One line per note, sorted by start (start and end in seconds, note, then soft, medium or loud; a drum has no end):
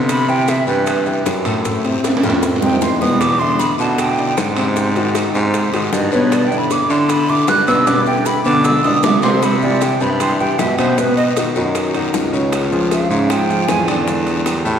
0.00 0.61 C3 medium
0.00 0.21 D3 medium
0.00 0.21 B3 medium
0.00 0.22 B4 medium
0.09 0.31 B5 medium
0.09 high bongo medium
0.09 high timbale medium
0.09 long guiro medium
0.09 maracas medium
0.28 0.60 E3 medium
0.28 0.61 E4 medium
0.28 0.61 G4 medium
0.28 0.51 G5 medium
0.28 maracas soft
0.48 0.67 E5 medium
0.48 high bongo medium
0.48 high timbale medium
0.48 short guiro medium
0.48 maracas medium
0.67 1.22 G2 medium
0.67 0.99 E3 medium
0.67 0.99 E4 medium
0.67 1.00 G4 medium
0.67 1.22 B4 medium
0.67 short guiro medium
0.67 maracas soft
0.86 high bongo medium
0.86 high timbale medium
0.86 long guiro medium
0.86 maracas medium
1.06 1.38 E3 medium
1.06 1.38 E4 medium
1.06 1.39 G4 medium
1.06 maracas soft
1.25 1.90 F#2 medium
1.25 high bongo medium
1.25 low bongo medium
1.25 high timbale medium
1.25 short guiro medium
1.25 maracas medium
1.45 1.61 A2 medium
1.45 1.62 A3 medium
1.45 1.62 A4 medium
1.45 high timbale medium
1.45 short guiro medium
1.45 maracas soft
1.65 1.81 A2 medium
1.65 1.81 A3 medium
1.65 1.81 A4 medium
1.65 high bongo medium
1.65 long guiro medium
1.65 maracas medium
1.84 2.16 C3 medium
1.84 2.17 C4 medium
1.84 2.17 E4 medium
1.84 high bongo soft
1.84 high timbale medium
1.84 maracas soft
2.04 high bongo medium
2.04 high timbale medium
2.04 short guiro medium
2.04 maracas medium
2.17 high timbale medium
2.23 2.59 F2 medium
2.23 2.55 A2 medium
2.23 2.56 A3 medium
2.23 2.56 A4 medium
2.23 high bongo medium
2.23 short guiro medium
2.23 maracas soft
2.30 high timbale medium
2.43 high bongo loud
2.43 long guiro medium
2.43 maracas medium
2.56 low timbale medium
2.62 2.80 F2 medium
2.62 2.94 C3 medium
2.62 2.95 C4 medium
2.62 2.95 D#4 medium
2.62 2.84 G5 medium
2.62 high bongo medium
2.62 maracas soft
2.69 low timbale medium
2.81 3.73 E2 medium
2.81 3.00 C6 medium
2.81 low bongo medium
2.81 low timbale medium
2.81 short guiro medium
2.81 maracas medium
3.01 3.33 B2 medium
3.01 3.33 B3 medium
3.01 3.34 B4 medium
3.01 3.22 D#6 medium
3.01 low bongo medium
3.01 short guiro medium
3.01 maracas soft
3.09 low timbale medium
3.20 3.41 D6 medium
3.20 high bongo medium
3.20 high timbale medium
3.20 long guiro medium
3.20 maracas medium
3.39 3.72 D3 medium
3.39 3.73 D4 medium
3.39 3.73 E4 medium
3.39 3.61 C6 medium
3.39 maracas soft
3.59 3.79 B5 medium
3.59 high bongo medium
3.59 high timbale medium
3.59 short guiro medium
3.59 maracas medium
3.78 4.33 B2 loud
3.78 4.11 D3 medium
3.78 4.12 D4 medium
3.78 4.12 E4 medium
3.78 4.01 A5 medium
3.78 short guiro medium
3.78 maracas soft
3.98 4.77 G5 medium
3.98 high bongo medium
3.98 high timbale medium
3.98 long guiro medium
3.98 maracas medium
4.18 4.50 D3 medium
4.18 4.50 D4 medium
4.18 4.50 E4 medium
4.18 maracas soft
4.37 5.28 G#2 medium
4.37 high bongo medium
4.37 low bongo medium
4.37 high timbale medium
4.37 short guiro medium
4.37 maracas medium
4.56 4.73 C3 medium
4.56 4.73 C4 medium
4.56 4.73 C5 medium
4.56 high timbale loud
4.56 short guiro medium
4.56 maracas soft
4.76 4.92 C3 medium
4.76 4.93 C4 medium
4.76 4.93 C5 medium
4.76 high bongo medium
4.76 long guiro medium
4.76 maracas medium
4.96 5.28 D#3 medium
4.96 5.28 D#4 medium
4.96 5.28 F#4 medium
4.96 high bongo soft
4.96 high timbale medium
4.96 maracas soft
5.15 high bongo medium
5.15 high timbale medium
5.15 short guiro medium
5.15 maracas medium
5.34 5.70 G#2 loud
5.34 5.67 C3 medium
5.34 5.67 C4 medium
5.34 5.67 C5 medium
5.34 high bongo soft
5.34 short guiro medium
5.34 maracas soft
5.54 high bongo medium
5.54 high timbale medium
5.54 long guiro medium
5.54 maracas medium
5.73 5.91 G#2 medium
5.73 6.06 D#3 medium
5.73 6.06 D#4 medium
5.73 6.06 F#4 medium
5.73 high bongo soft
5.73 high timbale medium
5.73 maracas soft
5.92 6.57 G2 loud
5.92 6.14 D#5 medium
5.92 high bongo medium
5.92 low bongo medium
5.92 short guiro medium
5.92 maracas medium
6.12 6.44 B2 medium
6.12 6.44 B3 medium
6.12 6.44 B4 medium
6.12 6.35 C#5 medium
6.12 short guiro medium
6.12 maracas soft
6.31 6.47 D5 medium
6.31 high bongo medium
6.31 high timbale medium
6.31 long guiro medium
6.31 maracas medium
6.45 6.59 G5 medium
6.51 6.83 D3 medium
6.51 6.83 D4 medium
6.51 6.83 E4 medium
6.51 maracas soft
6.58 6.73 B5 medium
6.70 6.92 D6 loud
6.70 high bongo medium
6.70 high timbale medium
6.70 short guiro medium
6.70 maracas medium
6.89 7.44 D3 loud
6.89 7.22 D3 medium
6.89 7.22 D4 medium
6.89 7.22 E4 medium
6.89 7.12 C6 medium
6.89 short guiro medium
6.89 maracas soft
7.09 7.31 B5 medium
7.09 high bongo medium
7.09 high timbale medium
7.09 long guiro medium
7.09 maracas medium
7.28 7.61 D3 medium
7.28 7.61 D4 medium
7.28 7.61 E4 medium
7.28 7.50 D6 loud
7.28 maracas soft
7.47 8.39 G2 medium
7.47 7.67 F#6 loud
7.47 high bongo medium
7.47 low bongo medium
7.47 high timbale medium
7.47 low timbale medium
7.47 short guiro medium
7.47 maracas medium
7.67 7.84 B2 medium
7.67 7.84 B3 medium
7.67 7.84 B4 medium
7.67 7.88 E6 medium
7.67 high timbale medium
7.67 short guiro medium
7.67 maracas soft
7.86 8.03 B2 medium
7.86 8.03 B3 medium
7.86 8.04 B4 medium
7.86 8.06 D6 medium
7.86 high bongo medium
7.86 high timbale loud
7.86 long guiro medium
7.86 maracas medium
8.06 8.38 D3 medium
8.06 8.39 D4 medium
8.06 8.39 E4 medium
8.06 8.27 G5 medium
8.06 high bongo soft
8.06 maracas soft
8.25 8.44 B5 medium
8.25 high bongo medium
8.25 short guiro medium
8.25 maracas medium
8.45 8.77 B2 medium
8.45 8.81 D3 loud
8.45 8.77 B3 medium
8.45 8.78 B4 medium
8.45 8.66 D6 medium
8.45 high bongo soft
8.45 short guiro medium
8.45 maracas soft
8.64 8.83 E6 medium
8.64 high bongo medium
8.64 low timbale medium
8.64 long guiro medium
8.64 maracas medium
8.84 9.02 D3 medium
8.84 9.16 D3 medium
8.84 9.17 D4 medium
8.84 9.17 E4 medium
8.84 9.05 D#6 medium
8.84 high bongo soft
8.84 low timbale medium
8.84 maracas soft
9.03 9.94 C3 medium
9.03 9.22 D6 medium
9.03 high bongo medium
9.03 low bongo medium
9.03 low timbale loud
9.03 short guiro medium
9.03 maracas medium
9.22 9.39 C3 medium
9.22 9.39 C4 medium
9.22 9.40 C5 medium
9.22 9.45 C6 medium
9.22 low timbale loud
9.22 short guiro medium
9.22 maracas soft
9.42 9.62 B5 medium
9.42 high bongo medium
9.42 high timbale medium
9.42 long guiro medium
9.42 maracas medium
9.62 9.94 E3 medium
9.62 9.94 E4 medium
9.62 9.95 G4 medium
9.62 9.83 D5 medium
9.62 maracas soft
9.80 10.03 G5 medium
9.80 high bongo medium
9.80 high timbale medium
9.80 short guiro medium
9.80 maracas medium
10.00 10.55 G2 medium
10.00 10.17 C3 medium
10.00 10.17 C4 medium
10.00 10.17 C5 medium
10.00 10.23 B5 medium
10.00 short guiro medium
10.00 maracas soft
10.20 10.36 E3 medium
10.20 10.36 E4 medium
10.20 10.36 G4 medium
10.20 10.38 C6 loud
10.20 high bongo medium
10.20 high timbale medium
10.20 maracas medium
10.39 10.72 E3 medium
10.39 10.72 E4 medium
10.39 10.72 G4 medium
10.39 10.60 G5 medium
10.39 maracas soft
10.58 11.23 B2 medium
10.58 10.77 E5 medium
10.58 high bongo medium
10.58 low bongo medium
10.58 high timbale medium
10.58 low timbale medium
10.58 short guiro medium
10.58 maracas medium
10.78 10.94 B2 medium
10.78 10.95 B3 medium
10.78 10.95 B4 medium
10.78 11.00 C5 medium
10.78 high timbale loud
10.78 short guiro medium
10.78 maracas soft
10.98 11.30 B2 medium
10.98 11.30 B3 medium
10.98 11.16 B4 medium
10.98 11.30 B4 medium
10.98 high bongo medium
10.98 long guiro medium
10.98 maracas medium
11.17 11.29 D#5 medium
11.17 high bongo soft
11.17 high timbale medium
11.17 maracas soft
11.36 11.53 D#3 medium
11.36 11.53 D#4 medium
11.36 11.53 F#4 medium
11.36 high bongo medium
11.36 high timbale medium
11.36 short guiro medium
11.36 maracas medium
11.55 12.10 F#2 medium
11.55 11.88 D#3 medium
11.55 11.88 D#4 medium
11.55 11.89 F#4 medium
11.55 high bongo soft
11.55 short guiro medium
11.55 maracas soft
11.75 high bongo medium
11.75 high timbale medium
11.75 long guiro medium
11.75 maracas medium
11.94 12.27 D#3 medium
11.94 12.27 D#4 medium
11.94 12.27 F#4 medium
11.94 high bongo soft
11.94 high timbale medium
11.94 maracas soft
12.13 13.04 C#2 medium
12.13 high bongo medium
12.13 low bongo medium
12.13 short guiro medium
12.13 maracas medium
12.32 12.65 C#3 medium
12.32 12.65 C#4 medium
12.32 12.65 C#5 medium
12.32 short guiro medium
12.32 maracas soft
12.52 high bongo medium
12.52 high timbale medium
12.52 long guiro medium
12.52 maracas medium
12.71 13.04 F3 medium
12.71 13.04 F4 medium
12.71 13.04 G#4 medium
12.71 maracas soft
12.91 13.31 F5 medium
12.91 high bongo medium
12.91 high timbale medium
12.91 short guiro medium
12.91 maracas medium
13.09 13.64 G#2 medium
13.09 13.27 C#3 medium
13.09 13.27 C#4 medium
13.09 13.27 C#5 medium
13.09 short guiro medium
13.09 maracas soft
13.30 13.46 F3 medium
13.30 13.46 F4 medium
13.30 13.46 G#4 medium
13.30 13.69 G5 medium
13.30 high bongo medium
13.30 high timbale loud
13.30 long guiro medium
13.30 maracas medium
13.49 13.81 F3 medium
13.49 13.81 F4 medium
13.49 13.82 G#4 medium
13.49 maracas soft
13.68 14.60 E2 medium
13.68 13.88 G#5 loud
13.68 high bongo medium
13.68 low bongo medium
13.68 high timbale medium
13.68 low timbale medium
13.68 short guiro medium
13.68 maracas medium
13.87 14.04 D3 medium
13.87 14.04 D4 medium
13.87 14.04 D5 medium
13.87 high timbale loud
13.87 short guiro medium
13.87 maracas soft
14.07 14.40 D3 medium
14.07 14.40 D4 medium
14.07 14.40 D5 medium
14.07 high bongo medium
14.07 long guiro medium
14.07 maracas medium
14.27 high bongo soft
14.27 high timbale medium
14.27 maracas soft
14.46 14.63 G3 medium
14.46 14.63 G4 medium
14.46 14.63 A#4 medium
14.46 high bongo medium
14.46 high timbale medium
14.46 short guiro medium
14.46 maracas medium
14.64 14.79 A2 loud
14.64 14.79 E3 medium
14.64 14.79 E4 medium
14.64 14.79 G4 medium
14.64 high bongo soft
14.64 short guiro medium
14.64 maracas soft